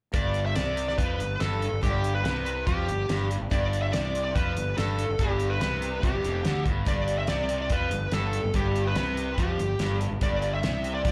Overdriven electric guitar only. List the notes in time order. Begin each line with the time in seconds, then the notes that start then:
0.14 G2
0.56 C3
0.99 F3
1.20 G2
1.41 G2
1.73 G2
1.84 G2
2.26 C3
2.68 F3
2.89 G2
3.10 G2
3.42 G2
3.51 G2
3.94 C3
4.36 F3
4.57 G2
4.78 G2
5.11 G2
5.21 G2
5.63 C3
6.05 C3
6.15 G2
6.25 F2
6.46 D3
6.66 G2
6.87 G2
7.30 C3
7.71 F3
7.93 G2
8.13 G2
8.45 G2
8.54 G2
8.96 C3
9.39 F3
9.59 G2
9.81 G2
10.12 G2
10.23 G2
10.63 C3
11.05 F3